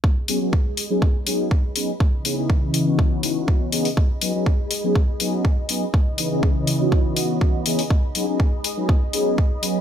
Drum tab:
HH |--o---o---o---o-|--o---o---o---oo|--o---o---o---o-|--o---o---o---oo|
BD |o---o---o---o---|o---o---o---o---|o---o---o---o---|o---o---o---o---|

HH |--o---o---o---o-|
BD |o---o---o---o---|